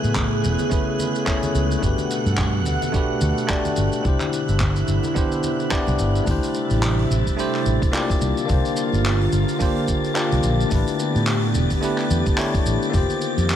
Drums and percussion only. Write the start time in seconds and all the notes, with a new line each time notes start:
0.04 shaker
0.15 kick, clap, high conga, low conga, shaker
0.44 low conga, shaker
0.59 high conga, shaker
0.71 kick, shaker
0.99 high conga, shaker
1.15 shaker
1.27 kick, clap, shaker
1.43 high conga, shaker
1.55 shaker
1.71 shaker
1.83 kick, shaker
1.98 high conga, shaker
2.11 shaker
2.26 shaker
2.37 kick, clap, high conga, low conga, shaker
2.66 low conga, shaker
2.82 high conga, shaker
2.94 kick, shaker
3.21 high conga, shaker
3.38 shaker
3.49 kick, clap, shaker
3.65 high conga, shaker
3.76 shaker
3.93 shaker
4.05 kick, shaker
4.20 clap, high conga, shaker
4.33 shaker
4.49 shaker
4.60 kick, clap, high conga, low conga, shaker
4.76 shaker
4.88 low conga, shaker
5.03 high conga, shaker
5.16 kick, shaker
5.32 shaker
5.43 high conga, shaker
5.60 shaker
5.71 kick, clap, shaker
5.87 high conga, low conga, shaker
5.99 shaker
6.16 shaker
6.27 kick, open hi-hat, shaker
6.43 open hi-hat, shaker
6.54 shaker
6.70 open hi-hat, shaker
6.82 clap, open hi-hat, shaker
6.99 open hi-hat
7.11 shaker
7.26 kick, open hi-hat, shaker
7.39 open hi-hat, shaker
7.54 clap, open hi-hat
7.66 shaker
7.82 kick, open hi-hat, shaker
7.94 clap, open hi-hat, shaker
8.09 kick, open hi-hat, shaker
8.21 shaker
8.37 shaker
8.49 kick, open hi-hat, shaker
8.65 open hi-hat, shaker
8.76 shaker
8.92 open hi-hat, shaker
9.05 clap, open hi-hat, shaker
9.21 open hi-hat
9.32 shaker
9.48 open hi-hat, shaker
9.60 kick, open hi-hat, shaker
9.76 open hi-hat
9.88 kick, shaker
10.04 open hi-hat, shaker
10.15 clap, open hi-hat, shaker
10.31 open hi-hat, shaker
10.43 shaker
10.61 shaker
10.71 kick, open hi-hat, shaker
10.87 open hi-hat, shaker
10.99 shaker
11.16 open hi-hat, shaker
11.27 clap, open hi-hat, shaker
11.43 open hi-hat
11.54 shaker
11.70 kick, open hi-hat, shaker
11.83 open hi-hat, shaker
11.98 clap, open hi-hat
12.11 shaker
12.26 kick, open hi-hat, shaker
12.38 clap, open hi-hat, shaker
12.54 kick, open hi-hat, shaker
12.66 shaker
12.82 shaker
12.94 kick, open hi-hat, shaker
13.10 open hi-hat, shaker
13.21 shaker
13.37 open hi-hat, shaker
13.49 clap, open hi-hat, shaker